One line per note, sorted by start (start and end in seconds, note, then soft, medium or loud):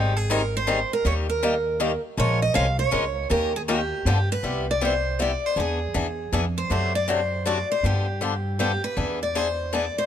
0.00 0.82 G#1 medium
0.00 0.12 D#3 medium
0.00 0.12 G3 medium
0.00 0.12 C4 medium
0.00 0.13 D#4 medium
0.00 0.16 G4 medium
0.00 0.13 G#4 medium
0.16 0.31 G#4 medium
0.30 0.41 D#3 medium
0.30 0.41 G3 medium
0.30 0.41 C4 medium
0.30 0.41 D#4 medium
0.30 0.41 G#4 loud
0.30 0.54 A#4 medium
0.57 0.91 C5 medium
0.67 0.78 D#3 medium
0.67 0.78 G3 medium
0.67 0.78 C4 medium
0.67 0.79 D#4 medium
0.67 0.79 G#4 medium
0.93 1.05 A#4 medium
1.05 1.95 D#2 medium
1.05 1.26 D#3 medium
1.05 1.26 G3 medium
1.05 1.26 A#3 medium
1.05 1.26 D#4 medium
1.05 1.26 G4 medium
1.05 1.13 C#5 medium
1.30 2.00 A#4 medium
1.43 1.54 D#3 medium
1.43 1.54 G3 medium
1.43 1.54 A#3 medium
1.43 1.54 D#4 medium
1.43 1.54 G4 medium
1.80 1.91 D#3 medium
1.80 1.91 G3 medium
1.80 1.91 A#3 medium
1.80 1.91 D#4 medium
1.80 1.91 G4 medium
2.17 2.48 A#1 medium
2.17 2.39 F3 medium
2.17 2.39 G#3 medium
2.17 2.39 C#4 medium
2.17 2.39 F4 medium
2.17 2.39 A#4 medium
2.17 2.40 C#5 loud
2.42 2.55 D#5 medium
2.54 2.87 C2 medium
2.54 2.66 F3 medium
2.54 2.66 G#3 medium
2.54 2.66 C#4 medium
2.54 2.66 F4 medium
2.54 2.66 A#4 loud
2.54 2.77 F5 loud
2.79 3.27 C#5 medium
2.91 3.25 C#2 medium
2.91 3.03 F3 medium
2.91 3.04 G#3 medium
2.91 3.04 C#4 medium
2.91 3.04 F4 loud
2.91 3.03 A#4 loud
3.30 3.91 D#2 medium
3.30 3.51 D#3 medium
3.30 3.51 A#3 medium
3.30 3.51 C#4 medium
3.30 3.52 G4 medium
3.30 3.52 A#4 medium
3.30 3.53 A#4 loud
3.56 3.61 G#4 medium
3.68 3.79 D#3 medium
3.68 3.79 A#3 medium
3.68 3.79 C#4 medium
3.68 4.06 G4 medium
3.68 3.80 G4 medium
3.68 3.80 A#4 medium
4.05 4.36 G2 medium
4.05 4.17 D3 medium
4.05 4.17 F3 medium
4.05 4.17 B3 medium
4.05 4.17 D4 medium
4.05 4.18 G4 medium
4.05 4.28 G4 medium
4.32 4.66 B4 loud
4.43 5.34 C2 medium
4.43 4.64 C3 soft
4.43 4.65 G3 medium
4.43 4.65 B3 medium
4.43 4.65 E4 medium
4.43 4.65 G4 medium
4.71 4.82 D5 medium
4.81 4.93 C3 medium
4.81 4.92 G3 medium
4.81 4.93 B3 medium
4.81 4.93 E4 medium
4.81 4.93 G4 medium
4.81 5.21 C5 medium
5.19 5.30 C3 medium
5.19 5.30 G3 medium
5.19 5.31 B3 medium
5.19 5.30 E4 medium
5.19 5.31 G4 medium
5.19 5.46 D5 medium
5.46 5.58 C5 medium
5.56 5.87 E2 medium
5.56 5.78 E3 medium
5.56 5.78 B3 medium
5.56 5.78 D4 medium
5.56 5.78 G#4 medium
5.56 6.33 G#4 medium
5.94 6.27 E2 medium
5.94 6.06 E3 medium
5.94 6.06 B3 medium
5.94 6.06 D4 medium
5.94 6.06 G#4 medium
6.32 6.65 F2 medium
6.32 6.44 E3 medium
6.32 6.44 B3 medium
6.32 6.44 D4 medium
6.32 6.44 G#4 medium
6.32 6.40 G#4 medium
6.58 6.70 C5 medium
6.70 7.61 F#2 medium
6.70 6.91 C3 medium
6.70 6.92 F#3 medium
6.70 6.92 A3 medium
6.70 6.92 D4 medium
6.70 6.92 F#4 medium
6.70 6.93 C5 medium
6.95 7.09 D5 medium
7.08 7.19 C3 medium
7.08 7.20 F#3 medium
7.08 7.19 A3 medium
7.08 7.20 D4 medium
7.08 7.20 F#4 medium
7.08 7.46 C5 medium
7.46 7.57 C3 medium
7.46 7.57 F#3 medium
7.46 7.57 A3 medium
7.46 7.57 D4 medium
7.46 7.58 F#4 medium
7.46 7.68 D5 medium
7.72 7.84 C5 medium
7.83 8.74 G2 medium
7.83 8.05 D3 medium
7.83 8.05 F3 medium
7.83 8.06 B3 medium
7.83 8.06 D4 medium
7.83 8.06 G4 medium
7.83 8.59 G4 medium
8.21 8.33 D3 medium
8.21 8.33 F3 medium
8.21 8.33 B3 medium
8.21 8.33 D4 medium
8.21 8.33 G4 medium
8.59 8.71 D3 medium
8.59 8.71 F3 medium
8.59 8.71 B3 medium
8.59 8.71 D4 medium
8.59 8.82 G4 medium
8.59 8.71 G4 medium
8.84 9.19 B4 medium
8.97 9.88 E2 medium
8.97 9.18 E3 medium
8.97 9.18 B3 medium
8.97 9.18 D4 medium
8.97 9.19 G#4 medium
9.23 9.37 D5 medium
9.35 9.47 E3 medium
9.35 9.47 B3 medium
9.35 9.47 D4 medium
9.35 9.47 G#4 medium
9.35 9.74 C5 medium
9.73 9.84 E3 medium
9.73 9.84 B3 medium
9.73 9.84 D4 medium
9.73 9.85 G#4 medium
9.73 9.96 D5 medium
9.98 10.03 C5 medium